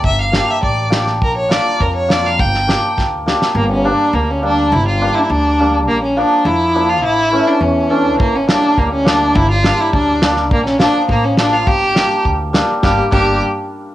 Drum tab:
CC |--------|--------|--------|--------|
SD |--o---oo|--o---oo|-oo-o-oo|--------|
BD |o---o---|o---o---|o---o---|--------|

CC |--------|--------|--------|--------|
SD |--------|--------|--------|--o---o-|
BD |--------|--------|--------|o---o---|

CC |--------|--------|--------|--x-----|
SD |--o---oo|-oo---o-|--o---o-|o-------|
BD |o---o---|o---o---|o---o---|o-o-----|